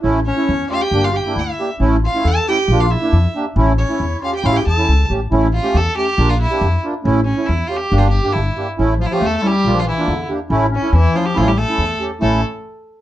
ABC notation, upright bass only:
X:1
M:2/4
L:1/8
Q:1/4=138
K:none
V:1 name="Upright bass" clef=bass
A,,,2 E,, z | G,,,2 D,, z | A,,,2 E,, z | _B,,,2 F,, z |
A,,,2 E,, z | A,,, E,, ^C,, A,,, | A,,,2 E,, z | _B,,,2 F,, z |
A,,,2 E,, z | G,,,2 G,,, z | A,,,2 E,, z | _B,,,2 E,, z |
A,,,2 E,, z | A,,,2 E,, z | A,,, z3 |]